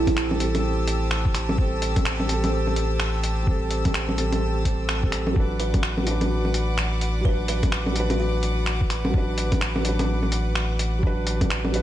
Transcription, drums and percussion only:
0.07 kick loud
0.07 closed hi-hat soft
0.07 low bongo medium
0.17 finger snap loud
0.31 low bongo medium
0.40 closed hi-hat medium
0.55 closed hi-hat soft
0.55 low bongo medium
0.88 closed hi-hat medium
1.11 finger snap loud
1.25 kick loud
1.35 finger snap medium
1.35 closed hi-hat medium
1.49 low bongo medium
1.58 kick loud
1.82 closed hi-hat medium
1.96 kick loud
1.96 closed hi-hat soft
1.96 low bongo soft
2.05 finger snap loud
2.20 low bongo medium
2.29 closed hi-hat medium
2.44 closed hi-hat soft
2.44 low bongo medium
2.67 low bongo soft
2.76 closed hi-hat medium
3.00 finger snap loud
3.24 closed hi-hat medium
3.47 kick loud
3.71 closed hi-hat medium
3.85 kick loud
3.85 closed hi-hat soft
3.85 low bongo soft
3.94 finger snap loud
4.09 low bongo medium
4.18 closed hi-hat soft
4.32 closed hi-hat soft
4.32 low bongo medium
4.65 kick medium
4.65 closed hi-hat medium
4.89 finger snap loud
5.03 kick loud
5.12 finger snap medium
5.12 closed hi-hat medium
5.27 low bongo medium
5.36 kick loud
5.60 closed hi-hat soft
5.74 kick medium
5.74 closed hi-hat soft
5.74 low bongo soft
5.83 finger snap loud
5.97 low bongo medium
6.07 closed hi-hat soft
6.21 closed hi-hat soft
6.21 low bongo medium
6.45 low bongo soft
6.54 closed hi-hat medium
6.78 finger snap loud
7.01 closed hi-hat medium
7.25 kick loud
7.48 closed hi-hat medium
7.63 kick loud
7.63 closed hi-hat soft
7.63 low bongo soft
7.72 finger snap loud
7.86 low bongo medium
7.96 closed hi-hat soft
8.10 closed hi-hat soft
8.10 low bongo medium
8.43 closed hi-hat medium
8.66 finger snap loud
8.81 kick loud
8.90 finger snap medium
8.90 closed hi-hat soft
9.05 low bongo medium
9.14 kick loud
9.38 closed hi-hat medium
9.52 kick loud
9.52 closed hi-hat soft
9.52 low bongo medium
9.61 finger snap loud
9.76 low bongo medium
9.85 closed hi-hat medium
9.99 closed hi-hat soft
9.99 low bongo medium
10.23 low bongo soft
10.32 closed hi-hat medium
10.55 finger snap loud
10.79 closed hi-hat medium
11.03 kick loud
11.27 closed hi-hat medium
11.41 kick loud
11.41 closed hi-hat soft
11.41 low bongo medium
11.50 finger snap loud
11.65 low bongo medium
11.74 closed hi-hat medium

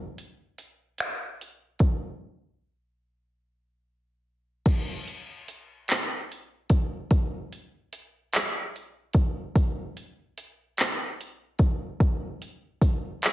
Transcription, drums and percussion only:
0.18 closed hi-hat soft
0.58 closed hi-hat medium
0.98 finger snap medium
0.98 closed hi-hat medium
1.41 closed hi-hat soft
1.79 kick medium
1.79 closed hi-hat medium
4.66 kick loud
4.66 closed hi-hat medium
4.66 crash loud
5.08 closed hi-hat medium
5.48 closed hi-hat medium
5.88 clap loud
5.88 closed hi-hat medium
6.32 closed hi-hat medium
6.70 kick medium
6.70 closed hi-hat medium
7.11 kick loud
7.11 closed hi-hat medium
7.53 closed hi-hat soft
7.93 closed hi-hat medium
8.33 clap loud
8.33 closed hi-hat medium
8.76 closed hi-hat medium
9.13 kick medium
9.13 closed hi-hat medium
9.56 kick loud
9.56 closed hi-hat medium
9.97 closed hi-hat soft
10.38 closed hi-hat medium
10.77 clap loud
10.77 closed hi-hat medium
11.21 closed hi-hat medium
11.59 kick medium
11.59 closed hi-hat medium
12.00 kick loud
12.00 closed hi-hat medium
12.42 closed hi-hat soft
12.81 kick medium
12.81 closed hi-hat medium
13.22 clap loud
13.22 closed hi-hat medium

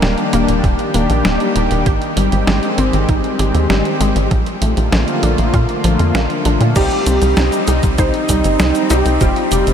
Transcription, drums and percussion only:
0.02 snare loud
0.02 closed hi-hat soft
0.18 closed hi-hat soft
0.33 closed hi-hat medium
0.48 closed hi-hat soft
0.64 kick loud
0.64 closed hi-hat soft
0.79 closed hi-hat soft
0.94 closed hi-hat medium
1.10 closed hi-hat soft
1.25 snare loud
1.25 closed hi-hat soft
1.40 closed hi-hat soft
1.56 closed hi-hat medium
1.71 closed hi-hat soft
1.86 kick loud
1.86 closed hi-hat medium
2.02 closed hi-hat soft
2.17 closed hi-hat medium
2.32 closed hi-hat medium
2.47 snare loud
2.47 closed hi-hat soft
2.63 closed hi-hat soft
2.78 closed hi-hat medium
2.93 closed hi-hat soft
3.09 kick loud
3.09 closed hi-hat medium
3.24 closed hi-hat soft
3.39 closed hi-hat medium
3.55 closed hi-hat medium
3.70 snare loud
3.70 closed hi-hat soft
3.85 closed hi-hat soft
4.01 closed hi-hat medium
4.16 closed hi-hat medium
4.31 kick loud
4.31 closed hi-hat medium
4.46 closed hi-hat soft
4.62 closed hi-hat loud
4.77 closed hi-hat medium
4.92 snare loud
4.92 closed hi-hat medium
5.08 closed hi-hat soft
5.23 closed hi-hat medium
5.38 closed hi-hat soft
5.54 kick loud
5.54 closed hi-hat medium
5.69 closed hi-hat soft
5.84 closed hi-hat medium
5.99 closed hi-hat medium
6.15 snare loud
6.15 closed hi-hat medium
6.30 closed hi-hat soft
6.45 closed hi-hat medium
6.61 closed hi-hat medium
6.76 kick loud
6.76 closed hi-hat medium
6.76 crash loud
6.76 shaker soft
6.91 closed hi-hat soft
7.07 closed hi-hat loud
7.07 shaker medium
7.22 closed hi-hat medium
7.22 shaker soft
7.37 snare loud
7.37 closed hi-hat medium
7.37 shaker soft
7.52 closed hi-hat soft
7.52 shaker soft
7.68 closed hi-hat loud
7.68 shaker medium
7.83 kick loud
7.83 closed hi-hat medium
7.83 shaker soft
7.98 kick loud
7.98 closed hi-hat medium
7.98 shaker soft
8.14 closed hi-hat soft
8.29 kick medium
8.29 closed hi-hat medium
8.29 shaker medium
8.44 closed hi-hat medium
8.44 shaker soft
8.60 snare loud
8.60 closed hi-hat medium
8.60 shaker soft
8.75 closed hi-hat soft
8.75 shaker soft
8.90 closed hi-hat loud
8.90 shaker medium
9.06 closed hi-hat medium
9.06 shaker soft
9.21 kick loud
9.21 closed hi-hat medium
9.21 shaker soft
9.36 closed hi-hat soft
9.52 closed hi-hat loud
9.52 shaker medium
9.67 closed hi-hat medium
9.67 shaker soft

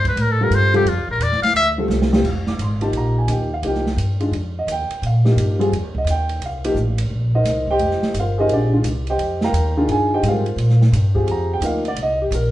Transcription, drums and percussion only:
0.05 kick medium
0.05 ride medium
0.17 ride medium
0.52 hi-hat pedal medium
0.52 ride medium
0.74 ride soft
0.87 ride medium
1.21 hi-hat pedal medium
1.21 ride medium
1.32 snare soft
1.43 snare soft
1.43 ride medium
1.56 ride medium
1.90 snare medium
1.90 hi-hat pedal medium
2.02 snare medium
2.13 snare medium
2.24 kick medium
2.24 crash medium
2.47 snare soft
2.59 hi-hat pedal medium
2.59 ride medium
2.81 ride soft
2.93 ride medium
3.28 hi-hat pedal medium
3.28 ride medium
3.63 ride medium
3.75 snare soft
3.86 snare soft
3.98 hi-hat pedal medium
3.98 ride medium
4.20 ride soft
4.33 ride medium
4.68 hi-hat pedal medium
4.68 ride medium
4.91 ride soft
5.03 ride medium
5.25 snare soft
5.38 hi-hat pedal medium
5.38 ride medium
5.61 ride medium
5.73 ride medium
5.95 kick medium
6.07 hi-hat pedal medium
6.07 ride medium
6.29 ride soft
6.42 ride medium
6.64 ride medium
6.76 hi-hat pedal soft
6.98 ride medium
7.45 snare soft
7.45 hi-hat pedal medium
7.45 ride medium
7.68 kick medium
7.79 ride medium
7.91 snare soft
8.02 snare soft
8.14 hi-hat pedal medium
8.14 ride medium
8.49 ride medium
8.84 hi-hat pedal medium
8.84 ride medium
9.07 ride soft
9.19 ride medium
9.41 snare medium
9.54 hi-hat pedal medium
9.54 ride medium
9.89 ride medium
10.23 hi-hat pedal medium
10.23 ride medium
10.46 ride soft
10.58 ride medium
10.70 snare soft
10.82 snare soft
10.93 hi-hat pedal medium
10.93 ride medium
11.15 kick medium
11.28 ride medium
11.62 hi-hat pedal medium
11.62 ride medium
11.85 ride soft
11.96 ride medium
12.32 hi-hat pedal medium
12.32 ride medium

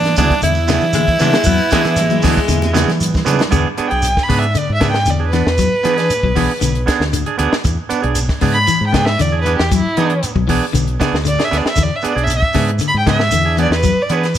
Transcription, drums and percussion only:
0.03 snare soft
0.03 closed hi-hat soft
0.03 high conga medium
0.03 shekere soft
0.16 kick medium
0.16 closed hi-hat soft
0.16 low conga medium
0.16 shekere medium
0.30 kick medium
0.30 closed hi-hat soft
0.30 shekere soft
0.42 closed hi-hat medium
0.42 shekere medium
0.55 shekere soft
0.68 snare medium
0.68 closed hi-hat soft
0.68 high conga medium
0.68 low conga medium
0.68 shekere medium
0.81 shekere soft
0.93 closed hi-hat medium
0.93 high conga medium
0.93 shekere loud
1.07 kick medium
1.07 closed hi-hat soft
1.07 shekere soft
1.19 closed hi-hat soft
1.19 high conga medium
1.19 low conga medium
1.19 shekere medium
1.32 snare medium
1.32 closed hi-hat soft
1.32 shekere soft
1.44 kick medium
1.44 closed hi-hat medium
1.44 shekere medium
1.58 shekere soft
1.70 kick medium
1.70 snare medium
1.70 closed hi-hat medium
1.70 high conga medium
1.70 shekere medium
1.84 snare soft
1.84 closed hi-hat soft
1.84 shekere soft
1.96 closed hi-hat medium
1.96 high conga medium
1.96 low conga medium
1.96 shekere medium
2.10 closed hi-hat soft
2.10 high conga medium
2.10 shekere soft
2.22 kick medium
2.22 snare soft
2.22 open hi-hat medium
2.22 low conga medium
2.22 shekere medium
2.36 kick medium
2.36 shekere soft
2.48 closed hi-hat medium
2.48 high conga medium
2.48 shekere medium
2.62 closed hi-hat soft
2.62 high conga loud
2.62 shekere soft
2.75 snare medium
2.75 closed hi-hat medium
2.75 high conga medium
2.75 shekere medium
2.88 snare soft
2.88 closed hi-hat soft
2.88 low conga medium
2.88 shekere soft
3.01 closed hi-hat medium
3.01 low conga medium
3.01 shekere medium
3.14 kick medium
3.14 snare soft
3.14 low conga medium
3.14 shekere soft
3.26 closed hi-hat medium
3.26 low conga medium
3.26 shekere medium
3.39 snare medium
3.39 closed hi-hat soft
3.39 low conga medium
3.39 shekere soft
3.52 kick medium
3.52 closed hi-hat medium
3.52 shekere medium
3.78 closed hi-hat soft
3.78 shekere soft
3.91 closed hi-hat soft
4.02 closed hi-hat medium
4.02 shekere medium
4.17 kick medium
4.17 snare soft
4.29 kick medium
4.29 open hi-hat medium
4.29 shekere soft
4.42 closed hi-hat soft
4.55 closed hi-hat medium
4.55 shekere medium
4.81 kick medium
4.81 snare medium
4.81 closed hi-hat soft
4.81 shekere soft
4.94 snare medium
5.06 closed hi-hat medium
5.06 shekere medium
5.32 snare soft
5.32 closed hi-hat soft
5.32 shekere soft
5.47 snare medium
5.58 kick medium
5.58 closed hi-hat medium
5.58 shekere medium
5.84 closed hi-hat soft
5.84 shekere soft
5.98 snare soft
5.98 closed hi-hat soft
6.10 closed hi-hat medium
6.10 shekere medium
6.23 kick medium
6.36 kick medium
6.36 open hi-hat medium
6.36 shekere soft
6.61 closed hi-hat medium
6.61 shekere medium
6.75 closed hi-hat soft
6.88 kick medium
6.88 snare medium
6.88 closed hi-hat soft
6.88 shekere soft
7.01 snare medium
7.13 closed hi-hat medium
7.13 shekere medium
7.26 closed hi-hat soft
7.39 closed hi-hat soft
7.39 shekere soft
7.53 snare medium
7.64 kick medium
7.64 closed hi-hat medium
7.64 shekere medium
7.90 closed hi-hat medium
7.90 shekere soft
8.03 closed hi-hat soft
8.15 closed hi-hat medium
8.15 shekere medium
8.29 kick medium
8.29 snare soft
8.41 kick medium
8.41 open hi-hat medium
8.41 shekere soft
8.55 closed hi-hat soft
8.67 closed hi-hat medium
8.67 shekere medium
8.94 kick medium
8.94 snare medium
8.94 closed hi-hat soft
8.94 shekere soft
9.06 snare medium
9.19 closed hi-hat medium
9.19 shekere medium
9.46 closed hi-hat soft
9.46 shekere soft
9.59 snare medium
9.71 kick medium
9.71 closed hi-hat medium
9.71 shekere medium
9.97 closed hi-hat soft
9.97 shekere soft
10.10 closed hi-hat soft
10.23 closed hi-hat medium
10.23 shekere medium
10.36 kick medium
10.49 kick medium
10.49 open hi-hat medium
10.49 shekere soft
10.75 closed hi-hat medium
10.75 shekere medium
10.88 closed hi-hat soft
11.00 kick medium
11.00 snare medium
11.00 closed hi-hat soft
11.00 shekere soft
11.15 snare medium
11.25 closed hi-hat medium
11.25 shekere medium
11.39 snare medium
11.39 closed hi-hat soft
11.51 snare soft
11.51 closed hi-hat medium
11.51 shekere soft
11.66 snare medium
11.76 kick medium
11.76 closed hi-hat medium
11.76 shekere medium
12.01 closed hi-hat medium
12.01 shekere soft
12.18 closed hi-hat soft
12.27 closed hi-hat medium
12.27 shekere medium
12.42 kick medium
12.53 kick medium
12.53 snare soft
12.53 open hi-hat medium
12.53 shekere soft
12.68 closed hi-hat soft
12.79 closed hi-hat medium
12.79 shekere medium
13.06 kick medium
13.06 snare medium
13.06 closed hi-hat soft
13.06 shekere soft
13.20 snare medium
13.31 closed hi-hat medium
13.31 shekere medium
13.57 closed hi-hat soft
13.57 shekere soft
13.72 snare medium
13.83 kick medium
13.83 closed hi-hat medium
13.83 shekere medium
14.09 closed hi-hat soft
14.09 shekere soft
14.23 snare soft
14.23 closed hi-hat soft
14.35 shekere medium

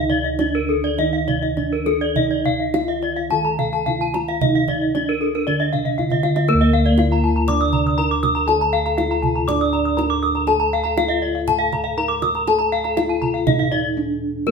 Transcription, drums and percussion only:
0.09 kendang low soft
0.39 kendang slap soft
0.39 kendang high medium
0.69 kendang slap soft
0.84 kendang slap soft
0.98 kendang high soft
1.28 kendang slap soft
1.28 kendang low soft
1.43 kendang slap soft
1.57 kendang slap soft
1.57 kendang low soft
1.86 kendang slap soft
1.86 kendang high soft
2.01 kendang slap soft
2.16 kendang low soft
2.45 kendang low soft
2.74 kendang slap soft
2.74 kendang high soft
3.02 kendang slap soft
3.17 kendang slap soft
3.30 kendang high soft
3.59 kendang slap soft
3.59 kendang low soft
3.72 kendang slap soft
3.86 kendang slap soft
3.86 kendang low soft
4.14 kendang slap soft
4.14 kendang high medium
4.28 kendang slap soft
4.41 kendang low medium
4.55 kendang slap soft
4.68 kendang low soft
4.95 kendang slap soft
4.95 kendang high soft
5.21 kendang slap soft
5.35 kendang slap soft
5.47 kendang high soft
5.61 kendang slap soft
5.73 kendang slap soft
5.73 kendang low soft
5.86 kendang low soft
5.99 kendang low soft
6.10 kendang low soft
6.23 kendang high soft
6.36 kendang high soft
6.48 kendang high soft
6.61 kendang slap soft
6.73 kendang slap soft
6.86 kendang slap soft
6.98 kendang slap soft
6.98 kendang high medium
7.11 kendang slap soft
7.48 kendang low medium
7.60 kendang slap soft
7.72 kendang slap soft
7.72 kendang low medium
8.23 kendang slap soft
8.23 kendang high soft
8.23 kendang low soft
8.36 kendang slap soft
8.49 kendang high soft
8.61 kendang slap soft
8.74 kendang slap soft
8.86 kendang slap soft
8.98 kendang slap soft
8.98 kendang high soft
9.11 kendang slap soft
9.23 kendang low soft
9.49 kendang high soft
9.49 kendang low medium
9.61 kendang slap soft
9.73 kendang slap soft
9.99 kendang high medium
10.23 kendang slap soft
10.35 kendang slap soft
10.47 kendang high soft
10.85 kendang slap soft
10.97 kendang slap soft
10.97 kendang high medium
11.10 kendang slap soft
11.48 kendang low medium
11.72 kendang slap soft
11.72 kendang low medium
12.22 kendang slap soft
12.22 kendang high soft
12.22 kendang low soft
12.35 kendang slap soft
12.47 kendang high soft
12.60 kendang slap soft
12.72 kendang slap soft
12.85 kendang slap soft
12.97 kendang slap soft
12.97 kendang high medium
13.10 kendang slap soft
13.22 kendang low soft
13.47 kendang high soft
13.47 kendang low medium
13.59 kendang slap soft
13.72 kendang slap soft
14.47 kendang high soft

